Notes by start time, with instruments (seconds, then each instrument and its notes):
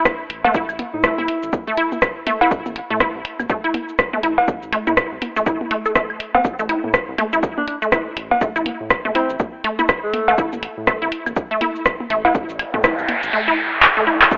0.05 kick, cross-stick, high tom, shaker
0.30 analog synth bass A1, closed hi-hat
0.44 synth pluck A3, high tom, cowbell
0.54 analog synth bass A1, synth pluck E4, kick, shaker
0.69 analog synth bass A1, high woodblock, shaker
0.79 closed hi-hat, high tom
0.94 analog synth bass A2, alto saxophone E4
1.04 synth pluck A3, kick, cross-stick, shaker
1.18 analog synth bass C2, synth pluck E4, high tom
1.28 closed hi-hat
1.43 analog synth bass A1, shaker
1.53 kick, high tom, shaker
1.67 synth pluck A3
1.77 synth pluck E4, closed hi-hat
1.92 high tom, shaker
2.02 kick, cross-stick, high woodblock, shaker
2.27 synth pluck A3, closed hi-hat, high tom
2.41 synth pluck E4, cowbell
2.51 analog synth bass A1, kick, shaker
2.66 analog synth bass A1, high tom, shaker
2.76 closed hi-hat
2.90 analog synth bass A2, synth pluck A3
3.00 synth pluck E4, kick, cross-stick, high tom, shaker
3.15 analog synth bass C2
3.25 closed hi-hat
3.40 analog synth bass A1, high tom, high woodblock, shaker
3.50 synth pluck A3, kick, shaker
3.64 synth pluck E4
3.74 closed hi-hat, high tom
3.89 shaker
3.99 kick, cross-stick, shaker
4.13 synth pluck A3, high tom
4.23 analog synth bass A1, synth pluck E4, closed hi-hat
4.38 cowbell
4.48 analog synth bass A1, kick, high tom, shaker
4.63 analog synth bass A1, shaker
4.72 synth pluck A3, closed hi-hat, high woodblock
4.87 analog synth bass A2, synth pluck E4, high tom, shaker
4.97 kick, cross-stick, shaker
5.12 analog synth bass C2
5.22 closed hi-hat, high tom
5.36 analog synth bass A1, synth pluck A3, shaker
5.46 synth pluck E4, kick, shaker
5.61 high tom
5.71 synth pluck A3, closed hi-hat
5.85 synth pluck A4, shaker
5.95 synth pluck A3, kick, cross-stick, high tom, shaker
6.10 high woodblock
6.20 closed hi-hat
6.35 synth pluck C4, high tom, cowbell
6.45 analog synth bass A1, kick, high tom, shaker
6.59 analog synth bass A1, synth pluck A3, shaker
6.69 synth pluck E4, closed hi-hat
6.84 analog synth bass A2, high tom
6.94 kick, cross-stick, shaker
7.08 analog synth bass C2
7.18 synth pluck A3, closed hi-hat, high tom, high woodblock
7.33 analog synth bass A1, synth pluck E4, shaker
7.43 kick, shaker
7.58 alto saxophone D4, high tom
7.68 alto saxophone D4, closed hi-hat
7.82 synth pluck A3, shaker
7.92 synth pluck E4, kick, cross-stick, high tom, shaker
8.17 analog synth bass A1, closed hi-hat
8.31 high tom, cowbell
8.41 analog synth bass A1, synth pluck A3, kick, shaker
8.56 analog synth bass A1, synth pluck E4, high woodblock, shaker
8.66 closed hi-hat, high tom
8.81 analog synth bass A2
8.90 kick, cross-stick, shaker
9.05 analog synth bass C2, synth pluck A3, high tom
9.15 alto saxophone C4, synth pluck E4, closed hi-hat
9.30 analog synth bass A1, shaker
9.40 kick, high tom, shaker
9.64 synth pluck A3, closed hi-hat
9.79 synth pluck E4, high tom, shaker
9.89 kick, cross-stick, high woodblock, shaker
10.03 alto saxophone A3
10.13 closed hi-hat, high tom
10.28 synth pluck A3, cowbell
10.38 analog synth bass A1, synth pluck E4, kick, shaker
10.53 analog synth bass A1, high tom, shaker
10.63 closed hi-hat
10.77 analog synth bass A2
10.87 synth pluck A3, kick, cross-stick, high tom, shaker
11.02 analog synth bass C2, synth pluck E4
11.12 closed hi-hat
11.26 analog synth bass A1, high tom, high woodblock, shaker
11.36 kick, shaker
11.51 synth pluck A3
11.61 synth pluck E4, closed hi-hat, high tom
11.76 shaker
11.86 kick, cross-stick, shaker
12.00 high tom
12.10 analog synth bass A1, synth pluck A3, closed hi-hat
12.25 synth pluck E4, cowbell
12.35 analog synth bass A1, kick, high tom, noise sweep, shaker
12.49 analog synth bass A1, shaker
12.59 closed hi-hat, high woodblock
12.74 analog synth bass A2, synth pluck A3, kick, high tom
12.84 synth pluck E4, kick, cross-stick, shaker
12.99 analog synth bass C2, shaker
13.08 closed hi-hat, high tom
13.23 analog synth bass A1, closed hi-hat, shaker
13.33 synth pluck A3
13.48 synth pluck E4
13.82 clap
13.97 synth pluck A3
14.07 synth pluck E4
14.22 clap
14.32 analog synth bass A1, synth pluck A3, kick, high tom, sub drop, shaker